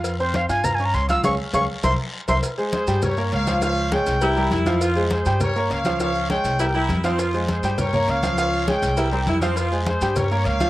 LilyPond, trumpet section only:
\new Staff \with { instrumentName = "Trumpet section" } { \time 4/4 \key f \minor \tempo 4 = 202 << { r1 | r1 | r4 c''4 des''4 f''4 | f''4 g''2 r4 |
r4 c''4 des''4 f''4 | f''4 g''2 r4 | r4 c''4 des''4 f''4 | f''4 g''2 r4 |
r4 c''4 des''4 f''4 | } \\ { r1 | r1 | r4 aes'4 bes'4 des''4 | des''4 des''4 r2 |
r4 aes'4 bes'4 des''4 | des''4 des''4 r2 | r4 aes'4 bes'4 des''4 | des''4 des''4 r2 |
r4 aes'4 bes'4 des''4 | } >> }